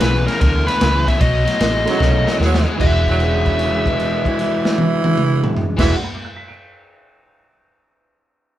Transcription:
0.00 B1 E2 C#3 B4, snare, ride
0.27 E2 C#3 A#4, snare, ride
0.40 D2 E2 D3 A#4, kick, snare, ride
0.66 E2 D3 B4, snare, ride
0.80 C#2 E2 C#3, snare, ride
1.06 E2 C#3 E5, kick, snare, ride
1.19 B1 B2 F#3 D#5, kick, snare, ride
1.45 B2 F#3, snare, ride
1.58 A1 B2 G#3, snare, ride
1.85 B2 F#3 G#3 A3 C#4 D#4 G#4, snare, ride
1.90 F#3
1.98 B1 B2 A3, kick, snare
2.04 C#3
2.24 B2 A3, snare
2.31 F#3
2.38 D#2 B2 G#3, snare
2.45 F#3
2.54 snare
2.65 B2 G#3
2.77 E1 E2 E3 G#3 D4 E4 F#4 G#4, kick, crash
2.81 F#4 E5
3.06 F#3, kick, crash
3.20 C#3 B4, crash
3.27 D5
3.35 F#5
3.44 B5, kick, crash
3.54 D6
3.59 crash
3.65 F#6
3.76 B6
3.86 B2 D7, kick, crash
3.99 crash
4.25 E3, kick, crash
4.39 E3, crash
4.65 snare
4.78 high tom
5.04 high tom
5.17 mid tom
5.44 mid tom
5.57 floor tom
5.77 E1 E2 E3 G#3 D4 F#4 B4 E5, kick, snare, crash
5.81 G#4
5.86 D5
5.95 F#5
6.04 B5
6.14 D6
6.25 F#6
6.37 B6
6.48 D7

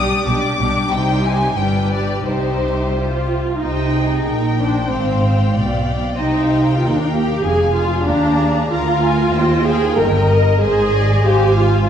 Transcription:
Already playing: G3 D4 G4 D5 D#6
0.26 B1 B2 G3 D4 G4 D5 D6
0.58 B1 B2 G3 D4 G4 D5
0.91 C2 C3 G3 D#4 G4 C5 G5
1.24 G#5
1.58 G1 G2 G3 D4 G4 B4 G5
1.92 D5
2.25 C2 C3 G3 D#4 G4 C5
2.94 F4
3.62 C2 C3 D#4 C5 D#5 G5
3.95 G#4
4.27 A#1 A#2 A#4 G5
4.60 D4 C5
4.91 G#1 G#2 C4 F5
5.54 B1 B2 D5
5.85 D5
6.17 C2 C3 D#4 C5 D#5 G5
6.48 F5
6.78 D#2 F4 A#4
6.87 D#4
6.96 D4
7.05 D#4
7.14 G4
7.44 F1 F2 G#4 G#5
7.75 F4
8.05 D#2 D4 G4 A#5
8.37 G#4
8.70 D2 F4 A#4 F5 A#5
9.02 G#5
9.33 D#2 C5 D#5 G5
9.66 G#4 F5
9.96 G1 G2 A#4 D#5 G5
10.29 D#5
10.60 G#1 G#2 G#4 C5 D#5 G#5
10.95 D5
11.24 G#1 G#2 G4 C5 F5 G#5
11.57 F4

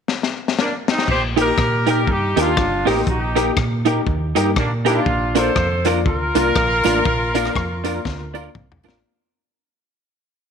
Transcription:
0.08 snare
0.23 snare
0.48 snare
0.59 A#3 D4, snare
0.88 C4 D#4, snare
0.99 snare
1.08 A#1 G4 C5, kick, crash
1.36 A#3 D#4 G4 A#4, closed hi-hat
1.58 A#2, kick, cross-stick
1.86 A#3 D#4 G4 A#4, closed hi-hat
2.07 G2 D#4 G4, kick
2.36 D#2 A#3 D4 D#4 F4 G4 A#4, closed hi-hat
2.57 G1 D#4 G4, kick, cross-stick
2.85 A1 A#3 C4 D#4 G4 A#4, cross-stick, open hi-hat
3.07 A#1 D#4 G4, kick, hi-hat pedal
3.35 A#3 D#4 G4 A#4, closed hi-hat
3.57 A#2, kick, cross-stick
3.85 A#3 D#4 G4 A#4, closed hi-hat
4.07 D#2, kick
4.35 G2 A#3 D#4 G4 A#4, closed hi-hat
4.56 A#2 A#3 D4, kick, cross-stick
4.85 A#3 D4 D#4 F4 G4 A#4, closed hi-hat
5.06 A#1, kick
5.35 A#3 D4 F4 A4 A#4 C5, closed hi-hat, tambourine
5.56 F2, kick, cross-stick
5.85 A#3 D4 F4 A#4, closed hi-hat, tambourine
6.06 D2 F4 A#4, kick
6.34 C2 A#3 D4 F4 A#4, closed hi-hat, tambourine
6.55 A#1 D4 F4, kick, cross-stick
6.84 A1 A#3 D4 F4 A#4, closed hi-hat, tambourine
7.05 A#1, kick
7.34 A#3 D4 F4 A#4, closed hi-hat, tambourine
7.45 cross-stick
7.55 F2, kick, cross-stick
7.84 A#3 D4 F4 A#4, closed hi-hat, tambourine
8.05 D2, kick, snare
8.33 A#3 D4 F4 A#4, tambourine
8.55 C2, kick, mid tom
8.72 floor tom
8.83 A1 A#3 D4 F4 A#4, tambourine
8.89 snare

